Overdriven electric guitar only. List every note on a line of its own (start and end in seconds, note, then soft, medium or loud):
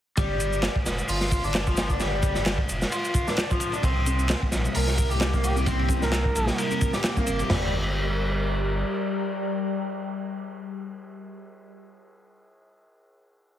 0.17 0.62 G3 medium
0.63 0.73 G3 medium
1.09 1.43 F4 medium
1.44 1.66 D4 medium
1.67 1.89 F3 loud
1.90 1.98 D4 medium
2.00 2.45 G3 medium
2.46 2.56 G3 medium
2.92 3.26 F4 medium
3.27 3.49 D4 medium
3.50 3.72 F3 loud
3.73 3.81 D4 medium
3.84 4.28 C4 medium
4.29 4.39 C4 medium
4.75 5.09 A#4 medium
5.11 5.32 G4 medium
5.34 5.55 A#3 loud
5.57 5.65 G4 medium
5.67 6.11 C4 medium
6.12 6.23 C4 medium
6.58 6.93 A#4 medium
6.94 7.16 G4 medium
7.17 7.38 A#3 loud
7.40 7.48 G4 medium
7.50 7.71 G3 medium